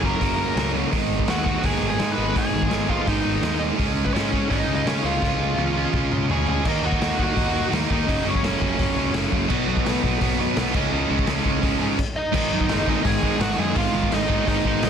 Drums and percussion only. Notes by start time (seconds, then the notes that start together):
0.03 kick
0.21 kick, open hi-hat
0.57 snare, open hi-hat
0.93 kick, open hi-hat
1.19 kick
1.27 snare, open hi-hat
1.46 kick
1.63 kick, open hi-hat
1.99 snare, open hi-hat
2.36 kick, open hi-hat
2.62 kick
2.71 snare, open hi-hat
2.89 kick
3.07 kick, open hi-hat
3.43 snare, open hi-hat
3.79 kick, open hi-hat
4.06 kick
4.16 snare, open hi-hat
4.33 kick
4.51 kick, open hi-hat
4.87 snare, open hi-hat
5.22 kick, snare
5.58 high tom
5.94 kick, mid tom
6.12 mid tom
6.30 floor tom
6.47 floor tom
6.65 kick, crash
6.92 kick
7.01 snare, open hi-hat
7.19 kick
7.37 kick, open hi-hat
7.73 snare, open hi-hat
7.90 kick
8.08 kick, open hi-hat
8.35 kick
8.44 snare, open hi-hat
8.61 kick
8.79 kick, open hi-hat
9.14 snare, open hi-hat
9.32 kick
9.50 kick, crash
9.77 kick
9.86 snare, open hi-hat
10.04 kick
10.21 kick, open hi-hat
10.56 snare, open hi-hat
10.74 kick, crash
11.19 kick
11.27 snare, open hi-hat
11.45 kick
11.63 kick, open hi-hat
11.99 kick, crash
12.34 kick, crash
12.61 kick
12.69 snare, open hi-hat
12.87 kick
13.05 kick, open hi-hat
13.23 kick
13.40 snare, open hi-hat
13.76 kick, open hi-hat
14.03 kick
14.12 snare, open hi-hat
14.30 kick
14.47 kick, open hi-hat
14.65 kick
14.82 snare, open hi-hat